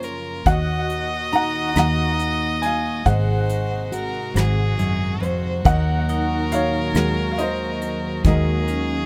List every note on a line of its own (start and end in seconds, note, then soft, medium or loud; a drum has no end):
0.00 0.29 F#2 medium
0.00 0.41 F#2 medium
0.00 0.44 C#3 medium
0.00 0.45 F3 medium
0.00 0.42 A#3 medium
0.00 0.44 A#3 medium
0.00 0.42 C#4 medium
0.00 0.44 F4 medium
0.00 0.46 F4 medium
0.00 0.12 A#4 medium
0.00 0.48 A#4 medium
0.00 0.10 C#5 medium
0.00 closed hi-hat soft
0.46 3.05 D#2 medium
0.46 1.59 D#2 medium
0.46 3.03 A#2 medium
0.46 3.03 D#3 medium
0.46 5.61 D#4 medium
0.46 1.60 F#4 soft
0.46 1.77 F#4 medium
0.46 3.03 F#4 medium
0.46 3.07 D#5 loud
0.46 1.31 D#5 medium
0.46 1.34 F#5 medium
0.46 kick medium
0.46 closed hi-hat medium
0.90 closed hi-hat soft
1.33 1.76 D#4 medium
1.33 1.75 F#5 medium
1.33 1.74 A#5 medium
1.33 closed hi-hat soft
1.75 2.89 D#2 medium
1.75 3.01 A#3 soft
1.75 3.91 D#4 medium
1.75 3.06 F#4 medium
1.75 2.60 F#5 medium
1.75 2.58 A#5 medium
1.75 cross-stick medium
1.75 closed hi-hat medium
2.19 closed hi-hat soft
2.62 3.04 F5 medium
2.62 3.07 G#5 medium
2.62 closed hi-hat soft
3.05 4.18 G#1 medium
3.05 4.33 G#2 medium
3.05 5.62 C3 medium
3.05 5.62 G#3 medium
3.05 9.06 F#4 medium
3.05 5.60 G#4 medium
3.05 3.94 C5 medium
3.05 5.20 D#5 medium
3.05 5.18 F#5 medium
3.05 kick medium
3.05 closed hi-hat medium
3.49 closed hi-hat soft
3.92 6.52 F#4 medium
3.92 4.36 A#4 medium
3.92 closed hi-hat soft
4.34 5.48 G#1 medium
4.34 4.77 G#2 medium
4.34 5.25 G#4 medium
4.34 cross-stick medium
4.34 closed hi-hat medium
4.78 5.20 F#2 medium
4.78 closed hi-hat soft
5.20 5.64 F2 medium
5.20 5.68 C5 medium
5.20 closed hi-hat soft
5.65 8.25 D#2 medium
5.65 6.78 D#2 loud
5.65 8.23 A#2 medium
5.65 9.06 D#3 medium
5.65 9.06 F#3 medium
5.65 8.22 D#4 medium
5.65 6.96 A#4 medium
5.65 8.24 A#4 medium
5.65 6.49 D#5 medium
5.65 6.48 F#5 medium
5.65 kick medium
5.65 closed hi-hat medium
6.09 7.23 D#4 medium
6.09 closed hi-hat soft
6.52 6.96 F#4 medium
6.52 7.28 C#5 medium
6.52 7.30 F5 medium
6.52 closed hi-hat soft
6.94 8.07 D#2 medium
6.94 8.25 G#3 medium
6.94 8.27 F#4 medium
6.94 8.28 A#4 medium
6.94 cross-stick medium
6.94 closed hi-hat medium
7.32 7.38 F5 medium
7.38 8.22 C5 medium
7.38 8.25 D#5 medium
7.38 closed hi-hat soft
7.82 closed hi-hat soft
8.24 9.06 D#2 medium
8.24 9.06 D#3 medium
8.24 9.06 G#3 medium
8.24 9.06 A#3 medium
8.24 9.06 F#4 medium
8.24 9.06 G#4 medium
8.24 9.06 A#4 medium
8.24 9.06 D#5 medium
8.24 9.06 F5 medium
8.24 kick medium
8.24 closed hi-hat medium
8.68 9.06 C#4 medium
8.68 closed hi-hat soft